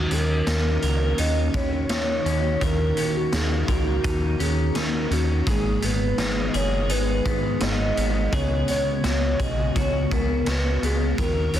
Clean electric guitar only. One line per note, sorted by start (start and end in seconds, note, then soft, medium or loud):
0.00 2.61 D#3 medium
0.00 1.82 F#3 medium
0.00 0.46 F#4 medium
0.00 0.82 A#4 medium
0.11 1.53 C#4 medium
0.47 1.18 D#4 soft
0.83 2.60 A#4 medium
1.18 1.89 D#4 medium
1.54 2.24 C#4 medium
1.90 3.32 D#4 medium
2.26 2.96 C#4 medium
2.61 6.11 D#3 medium
2.61 3.67 A#4 medium
2.97 4.38 C#4 medium
3.32 4.03 D#4 medium
3.68 5.47 A#4 medium
4.04 4.75 D#4 medium
4.40 5.10 C#4 medium
4.75 6.18 D#4 medium
5.11 5.54 C#4 medium
5.47 8.33 G#2 medium
5.47 6.54 G#4 medium
5.82 7.25 B3 medium
6.18 6.88 D#4 medium
6.54 8.32 G#4 medium
6.89 7.60 D#4 medium
7.25 7.96 B3 medium
7.61 8.40 D#4 medium
7.97 8.68 B3 soft
8.32 11.18 C#3 medium
8.32 9.38 G#4 medium
8.68 10.10 B3 medium
9.04 9.75 F#4 medium
9.39 11.18 G#4 medium
9.75 10.47 F#4 medium
10.11 10.82 B3 medium
10.47 11.60 F#4 medium
10.83 11.26 B3 medium
11.18 11.60 D#3 medium
11.18 11.60 A#4 medium
11.54 11.60 C#4 medium